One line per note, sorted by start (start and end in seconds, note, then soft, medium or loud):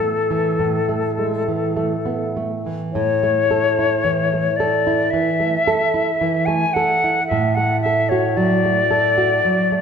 0.00 0.55 A2 soft
0.00 0.47 A3 soft
0.00 2.36 A4 soft
0.31 0.78 E3 soft
0.59 2.90 A2 soft
0.88 1.37 A3 soft
1.18 1.48 G#3 soft
1.48 1.95 E3 soft
1.77 2.24 A3 soft
2.06 2.36 B3 soft
2.37 2.83 A3 soft
2.66 2.95 E3 soft
2.93 5.08 A2 medium
2.93 4.58 C#5 medium
3.23 3.67 A3 soft
3.51 3.94 A4 soft
3.79 4.22 E4 soft
4.05 4.48 E3 soft
4.33 4.75 A3 soft
4.56 5.02 A4 soft
4.56 5.12 D5 medium
4.87 5.29 E4 soft
5.10 5.56 E3 soft
5.10 6.47 E5 medium
5.40 5.82 A3 soft
5.67 6.10 A4 soft
5.94 6.37 E4 soft
6.21 6.64 E3 soft
6.46 6.91 A3 soft
6.46 6.75 G#5 medium
6.74 7.19 A4 soft
6.74 7.27 F#5 medium
7.04 7.30 E4 soft
7.27 9.40 A2 medium
7.27 7.56 E5 medium
7.55 8.00 A3 soft
7.55 7.81 F#5 medium
7.81 8.11 E5 medium
7.86 8.28 A4 soft
8.09 8.53 F#4 soft
8.09 8.38 C#5 medium
8.37 8.79 F#3 soft
8.37 9.81 D5 medium
8.65 9.06 A3 soft
8.91 9.33 A4 soft
9.18 9.60 F#4 soft
9.45 9.81 F#3 soft
9.72 9.81 A3 soft